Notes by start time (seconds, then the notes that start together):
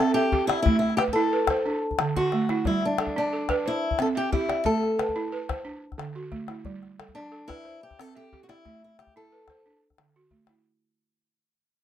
Already playing: A4 C5
0.00 C4
0.14 G4 E5
0.32 G4, calabash thump
0.47 E4 D5, calabash click
0.62 A3 E4, calabash thump, calabash click
0.79 E4, calabash click
0.90 calabash click
0.97 G4 B4, calabash click
1.08 calabash thump, calabash click
1.13 E4 A4, calabash click
1.33 B4
1.47 C5, calabash thump, calabash click
1.57 calabash click
1.66 D4
1.91 calabash thump
1.99 D3, calabash click
2.16 F#4, calabash thump
2.32 A3, calabash click
2.49 E4, calabash click
2.65 G3 E4, calabash thump
2.82 D4, calabash click
2.98 A4, calabash click
3.07 calabash thump
3.16 D4
3.33 A4
3.49 B4, calabash thump, calabash click
3.66 E4 C5
3.91 calabash thump
3.99 C4 A4, calabash click
4.15 G4 E5
4.32 E4 G4, calabash thump
4.49 D5, calabash click
4.65 A3 A4, calabash thump
4.83 calabash click
4.99 B4, calabash click
5.09 calabash thump
5.16 E4
5.32 B4
5.49 C5, calabash thump, calabash click
5.65 D4
5.92 calabash thump, calabash click
5.98 D3, calabash click
6.15 F#4
6.32 A3, calabash thump
6.48 E4, calabash click
6.65 G3, calabash thump
6.83 calabash click
7.00 A4, calabash click
7.08 calabash thump
7.15 D4
7.32 A4
7.48 E4 B4, calabash thump, calabash click
7.65 C5
7.83 G4
7.91 calabash thump, calabash click
7.99 C4 A4, calabash click
8.15 G4 E5
8.33 G4, calabash thump
8.43 F#4
8.49 E4 D5, calabash click
8.65 A3, calabash thump, calabash click
8.74 calabash click
8.84 E4
8.99 G4, calabash click
9.07 calabash thump
9.16 E4 A4
9.32 B4
9.48 C5, calabash thump, calabash click
9.66 D4
9.90 calabash thump, calabash click
9.98 D3, calabash click
10.14 F#4, calabash click
10.31 A3, calabash thump
10.47 E4, calabash click